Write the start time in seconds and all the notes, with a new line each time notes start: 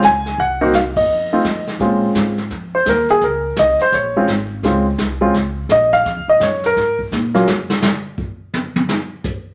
0.02 C#2 G#5, snare, hi-hat pedal
0.26 snare
0.38 C2 F#5, brush sweep, kick
0.61 A#3 C4 D#4 F#4
0.73 F5, snare, hi-hat pedal
0.96 D#2 D#5, kick, ride
1.09 F2, brush sweep
1.33 A3 C4 D#4 F4
1.44 F2, snare, hi-hat pedal
1.67 snare
1.80 A#2 G#3 C4 C#4 F4, brush sweep, kick, snare
2.15 G#2, kick, snare, hi-hat pedal
2.38 snare
2.50 F2, brush sweep, kick, snare
2.75 C5
2.86 D#2 A#4, kick, snare, hi-hat pedal
3.09 G#4, snare
3.21 C#2 A#4, brush sweep, kick, snare
3.56 C2 D#5, kick, snare, hi-hat pedal
3.79 C5, muted upright bass stroke, snare
3.92 A#1 C#5, brush sweep, kick, snare
4.16 G#3 C4 C#4 F4
4.27 G#1, kick, snare, hi-hat pedal
4.63 C#2 G#3 C4 C#4 F4, brush sweep, kick, snare
4.98 C2, kick, snare, hi-hat pedal
5.21 G#3 C4 C#4 F4
5.34 C#2, brush sweep, kick, snare
5.69 A#1 D#5, kick, snare, hi-hat pedal
5.92 F5, snare
6.05 F2, brush sweep, kick, snare
6.17 C#2
6.28 A#1 D#5
6.40 F#2 C#5, kick, snare, hi-hat pedal
6.64 A#4, snare
6.76 G#2, brush sweep, kick, snare
6.99 kick
7.12 A#2, kick, snare, hi-hat pedal
7.35 F#3 A#3 C#4 F4, snare
7.47 F#2, snare
7.70 snare
7.82 snare, hi-hat pedal
8.18 kick
8.53 hi-hat pedal, high tom
8.76 high tom
8.89 snare
9.24 kick, hi-hat pedal